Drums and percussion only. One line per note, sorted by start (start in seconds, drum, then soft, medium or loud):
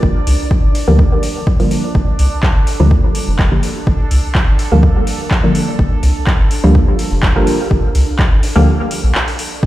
0.03 kick loud
0.27 open hi-hat medium
0.51 kick loud
0.75 open hi-hat medium
0.99 kick loud
1.23 open hi-hat medium
1.47 kick loud
1.60 open hi-hat soft
1.71 open hi-hat medium
1.95 kick loud
2.19 open hi-hat medium
2.43 kick loud
2.43 clap medium
2.67 open hi-hat medium
2.91 kick loud
3.15 open hi-hat medium
3.39 kick loud
3.39 clap medium
3.63 open hi-hat medium
3.87 kick loud
4.11 open hi-hat medium
4.35 kick loud
4.35 clap medium
4.59 open hi-hat medium
4.83 kick loud
5.07 open hi-hat medium
5.31 kick loud
5.31 clap medium
5.55 open hi-hat medium
5.79 kick loud
6.03 open hi-hat medium
6.27 kick loud
6.27 clap medium
6.51 open hi-hat medium
6.75 kick loud
6.99 open hi-hat medium
7.23 kick loud
7.23 clap medium
7.47 open hi-hat medium
7.71 kick loud
7.95 open hi-hat medium
8.19 kick loud
8.19 clap medium
8.43 open hi-hat medium
8.91 open hi-hat medium
9.15 clap medium
9.28 open hi-hat soft
9.39 open hi-hat medium
9.63 kick loud